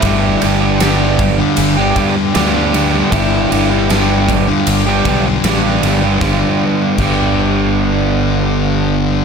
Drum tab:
CC |--------|--------|--x-----|
RD |xxxxxxxx|xxxxxxxx|--------|
SD |--o---o-|--o---o-|o-------|
BD |o--o-o--|o--o-o--|o-o-----|